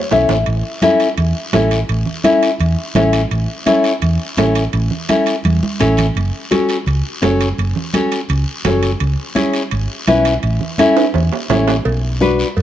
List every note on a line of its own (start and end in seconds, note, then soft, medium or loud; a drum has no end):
0.00 0.10 C#5 medium
0.11 0.27 B1 medium
0.11 0.36 C#4 medium
0.11 0.36 E4 medium
0.11 0.36 A4 medium
0.11 0.45 E5 medium
0.11 low conga medium
0.11 low timbale medium
0.11 short guiro medium
0.29 0.45 A1 medium
0.29 low conga medium
0.29 low timbale medium
0.29 short guiro medium
0.46 0.61 A1 medium
0.46 high conga soft
0.46 high timbale medium
0.46 long guiro medium
0.82 1.07 C#4 medium
0.82 1.07 E4 medium
0.82 1.08 A4 loud
0.82 high conga medium
0.82 high timbale medium
0.82 short guiro medium
1.00 high timbale medium
1.00 short guiro medium
1.18 1.32 E2 medium
1.18 high conga soft
1.18 high timbale medium
1.18 long guiro medium
1.53 1.82 A1 medium
1.53 1.78 C#4 medium
1.53 1.79 E4 medium
1.53 1.79 A4 medium
1.53 high conga medium
1.53 high timbale medium
1.53 low timbale medium
1.53 short guiro medium
1.71 high timbale medium
1.71 short guiro medium
1.89 2.03 A1 medium
1.89 high conga soft
1.89 high timbale medium
1.89 long guiro medium
2.06 low conga medium
2.24 2.49 C#4 medium
2.24 2.49 E4 medium
2.24 2.50 A4 medium
2.24 high conga medium
2.24 high timbale medium
2.24 short guiro medium
2.43 high timbale medium
2.43 short guiro medium
2.60 2.74 E2 loud
2.60 high conga soft
2.60 high timbale medium
2.60 long guiro medium
2.95 3.24 A1 medium
2.95 3.20 C#4 medium
2.95 3.21 E4 medium
2.95 3.21 A4 medium
2.95 high conga medium
2.95 low conga medium
2.95 high timbale medium
2.95 low timbale medium
2.95 short guiro medium
3.13 high timbale medium
3.13 short guiro medium
3.31 3.46 A1 medium
3.31 high conga soft
3.31 high timbale medium
3.31 long guiro medium
3.66 3.91 C#4 medium
3.66 3.92 E4 medium
3.66 3.92 A4 loud
3.66 high conga medium
3.66 high timbale medium
3.66 short guiro medium
3.84 high timbale medium
3.84 short guiro medium
4.02 4.17 E2 medium
4.02 high conga soft
4.02 high timbale medium
4.02 long guiro medium
4.37 4.66 A1 medium
4.37 4.63 C#4 medium
4.37 4.63 E4 medium
4.37 4.63 A4 medium
4.37 high conga medium
4.37 high timbale medium
4.37 low timbale medium
4.37 short guiro medium
4.55 high timbale medium
4.55 short guiro medium
4.73 4.88 A1 loud
4.73 high conga soft
4.73 high timbale medium
4.73 long guiro medium
4.91 low conga medium
5.09 5.34 C#4 medium
5.09 5.34 E4 medium
5.09 5.35 A4 medium
5.09 high conga medium
5.09 high timbale medium
5.09 short guiro medium
5.26 high timbale medium
5.26 short guiro medium
5.44 5.59 E2 medium
5.44 high conga medium
5.44 high timbale medium
5.44 long guiro medium
5.63 high conga medium
5.80 6.09 A1 medium
5.80 6.05 C#4 medium
5.80 6.05 E4 medium
5.80 6.06 A4 medium
5.80 low conga medium
5.80 high timbale medium
5.80 short guiro medium
5.97 low conga medium
5.97 high timbale medium
5.97 short guiro medium
6.15 6.30 F#1 medium
6.15 high conga soft
6.15 high timbale medium
6.15 long guiro medium
6.51 6.76 C#4 medium
6.51 6.76 F#4 medium
6.51 6.76 A4 loud
6.51 high conga medium
6.51 high timbale medium
6.51 short guiro medium
6.69 high timbale medium
6.69 short guiro medium
6.86 7.01 C#2 medium
6.86 high conga soft
6.86 high timbale medium
6.86 long guiro medium
7.22 7.51 F#1 medium
7.22 7.47 C#4 medium
7.22 7.47 F#4 medium
7.22 7.48 A4 loud
7.22 high conga medium
7.22 high timbale medium
7.22 low timbale medium
7.22 short guiro medium
7.41 high timbale medium
7.41 short guiro medium
7.58 7.73 F#1 medium
7.58 high conga soft
7.58 high timbale medium
7.58 long guiro medium
7.76 low conga medium
7.93 8.19 C#4 medium
7.93 8.19 F#4 medium
7.93 8.19 A4 medium
7.93 high conga medium
7.93 high timbale medium
7.93 short guiro medium
8.12 high timbale medium
8.12 short guiro medium
8.29 8.44 C#2 medium
8.29 high conga soft
8.29 high timbale medium
8.29 long guiro medium
8.65 8.94 F#1 medium
8.65 8.90 C#4 medium
8.65 8.90 F#4 medium
8.65 8.90 A4 medium
8.65 high conga medium
8.65 low conga medium
8.65 high timbale medium
8.65 low timbale medium
8.65 short guiro medium
8.83 high timbale medium
8.83 short guiro medium
9.00 9.15 C#2 medium
9.00 high conga soft
9.00 high timbale medium
9.00 long guiro medium
9.35 9.61 C#4 medium
9.35 9.61 E4 medium
9.35 9.61 G#4 medium
9.35 high conga medium
9.35 high timbale medium
9.35 short guiro medium
9.54 high timbale medium
9.54 short guiro medium
9.71 9.86 G#1 medium
9.71 high conga soft
9.71 high timbale medium
9.71 long guiro medium
10.07 10.36 B1 medium
10.07 10.33 C#4 medium
10.07 10.33 E4 medium
10.07 10.33 B4 medium
10.07 high conga medium
10.07 high timbale medium
10.07 short guiro medium
10.25 high timbale medium
10.25 short guiro medium
10.43 10.58 A1 loud
10.43 high conga soft
10.43 high timbale medium
10.43 long guiro medium
10.61 low conga medium
10.78 11.04 C#4 medium
10.78 11.04 E4 medium
10.78 11.04 A4 loud
10.78 high conga medium
10.78 high timbale medium
10.78 short guiro medium
10.97 high timbale medium
10.97 short guiro medium
11.14 11.29 E2 medium
11.14 high conga soft
11.14 low timbale medium
11.14 long guiro medium
11.33 low timbale medium
11.50 11.79 A1 medium
11.50 11.75 C#4 medium
11.50 11.75 E4 medium
11.50 11.75 A4 medium
11.50 high conga medium
11.50 low conga medium
11.50 low timbale loud
11.50 short guiro medium
11.68 low timbale loud
11.68 short guiro medium
11.85 12.43 B1 loud
11.85 cowbell loud
11.85 high conga soft
11.85 long guiro medium
12.21 12.46 D4 medium
12.21 12.46 F#4 medium
12.21 12.47 B4 loud
12.21 high conga medium
12.21 short guiro medium
12.39 short guiro medium
12.57 12.62 F#2 medium
12.57 cowbell medium
12.57 high conga soft
12.57 long guiro medium